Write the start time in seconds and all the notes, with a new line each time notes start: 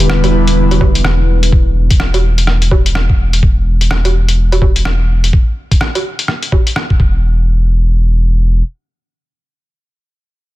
Already playing: E1 D3 G3 B3 E4 B4
0.00 closed hi-hat
0.10 cross-stick
0.24 closed hi-hat, low woodblock
0.47 closed hi-hat
0.71 closed hi-hat, low woodblock
0.81 kick, low woodblock
0.95 closed hi-hat
1.05 cross-stick
1.43 closed hi-hat
1.52 kick
1.91 kick, closed hi-hat
2.00 cross-stick
2.14 closed hi-hat, low woodblock
2.38 closed hi-hat
2.47 cross-stick
2.62 closed hi-hat
2.71 kick, low woodblock
2.86 closed hi-hat
2.95 cross-stick
3.10 kick
3.33 closed hi-hat
3.43 kick
3.81 closed hi-hat
3.91 cross-stick
4.05 closed hi-hat, low woodblock
4.29 closed hi-hat
4.52 closed hi-hat, low woodblock
4.62 kick, low woodblock
4.76 closed hi-hat
4.85 cross-stick
5.24 closed hi-hat
5.33 kick
5.71 kick, closed hi-hat
5.81 cross-stick
5.95 closed hi-hat, low woodblock
6.19 closed hi-hat
6.28 cross-stick
6.43 closed hi-hat
6.52 kick, low woodblock
6.67 closed hi-hat
6.76 cross-stick
6.90 kick
7.00 E1, kick